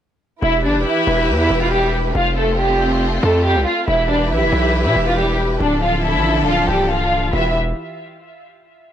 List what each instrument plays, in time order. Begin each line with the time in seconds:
0.42 808-style bass E1, string section E3 E4 G4 B4, violin section E4 E5
0.64 808-style bass G1, violin section D4 D5
0.75 808-style bass E1
0.86 violin section E4 E5
1.07 808-style bass E1
1.29 808-style bass E2
1.40 violin section E4 E5
1.50 808-style bass E1
1.61 violin section F4 F5
1.72 violin section G3 G4
2.15 808-style bass F1, string section A3 C4 F4, violin section F4 F5
2.37 violin section A3 A4
2.58 violin section G3 G4
3.23 808-style bass F2, violin section A3 A4
3.45 violin section G3 G4
3.55 808-style bass C2
3.66 violin section F4 F5
3.88 808-style bass E1, string section E3 E4 G4 B4, violin section E4 E5
4.09 violin section D4 D5
4.31 808-style bass B1, violin section E4 E5
4.42 808-style bass E1
4.53 808-style bass B1
4.85 808-style bass B2, violin section E4 E5
4.96 808-style bass E1
5.07 violin section F4 F5
5.17 violin section G3 G4
5.60 808-style bass D1, string section D3 F3 D4 A4, violin section D4 D5
5.82 violin section F4 F5
6.04 violin section E4 E5
6.14 808-style bass A1
6.41 808-style bass D1
6.47 violin section F4 F5
6.68 808-style bass C1, violin section G3 G4
6.90 violin section F4 F5
7.33 808-style bass E1, string section E3 E4 G4 B4, violin section E5